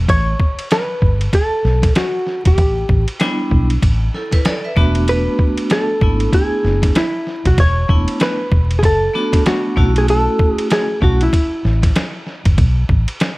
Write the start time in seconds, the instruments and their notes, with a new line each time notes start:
0.08 fingered electric bass A1, hollow-body jazz guitar C#5, kick, ride
0.40 kick
0.59 ride
0.71 hollow-body jazz guitar B4, snare, hi-hat pedal, ride
1.02 fingered electric bass G1, kick
1.21 ride
1.33 hollow-body jazz guitar A4, kick, ride
1.65 fingered electric bass B1, snare
1.82 kick, snare, ride
1.95 hollow-body jazz guitar F#4, snare, hi-hat pedal, ride
2.27 snare
2.45 fingered electric bass E1, hollow-body jazz guitar G4, kick, ride
2.58 fingered electric bass A1, kick, ride
2.89 fingered electric bass A1, kick
3.08 ride
3.20 vibraphone G3 B3 D4 E4, snare, hi-hat pedal, ride
3.51 fingered electric bass B1, kick
3.70 ride
3.83 fingered electric bass A1, kick, ride
4.14 vibraphone E4 A4, snare
4.31 vibraphone E4 B4, kick, snare, ride
4.45 vibraphone A4 D5, snare, hi-hat pedal, ride
4.65 vibraphone B4 E5
4.76 fingered electric bass E1, vibraphone A3 B3 D4 F#4, kick, snare
4.95 ride
5.08 hollow-body jazz guitar B4, ride
5.39 kick
5.58 ride
5.70 hollow-body jazz guitar A4, snare, hi-hat pedal, ride
6.01 fingered electric bass G#1, vibraphone A3 B3 D4 E4, kick
6.20 ride
6.33 hollow-body jazz guitar G#4, kick, ride
6.64 fingered electric bass F#1, snare
6.82 kick, snare, ride
6.95 hollow-body jazz guitar E4, snare, hi-hat pedal, ride
7.27 snare
7.45 fingered electric bass B1, hollow-body jazz guitar F#4, kick, ride
7.58 fingered electric bass E1, hollow-body jazz guitar C#5, kick, ride
7.88 fingered electric bass E1, vibraphone A3 B3 D4 E4, kick
8.08 ride
8.20 hollow-body jazz guitar B4, snare, hi-hat pedal, ride
8.52 fingered electric bass E1, kick
8.71 ride
8.79 hollow-body jazz guitar G#4, kick
8.83 fingered electric bass F#1, hollow-body jazz guitar A4, ride
9.14 vibraphone A3 B3 D4 F#4, snare
9.32 kick, snare, ride
9.46 hollow-body jazz guitar F#4, snare, hi-hat pedal, ride
9.76 fingered electric bass B1, vibraphone A3 C#4 E4 F#4, kick, snare
9.96 hollow-body jazz guitar G#4, ride
10.08 hollow-body jazz guitar A4, ride
10.39 kick
10.51 hollow-body jazz guitar G#4
10.58 ride
10.70 hollow-body jazz guitar G#4, snare, hi-hat pedal, ride
11.01 fingered electric bass B1, vibraphone A3 C#4 E4 F#4, hollow-body jazz guitar F#4, kick
11.21 hollow-body jazz guitar E4, ride
11.33 kick, ride
11.65 fingered electric bass A1, snare
11.82 kick, snare, ride
11.96 snare, hi-hat pedal, ride
12.27 snare
12.45 fingered electric bass F#1, kick, ride
12.58 fingered electric bass B1, kick, ride
12.89 fingered electric bass A1, kick
13.08 ride
13.20 snare, hi-hat pedal, ride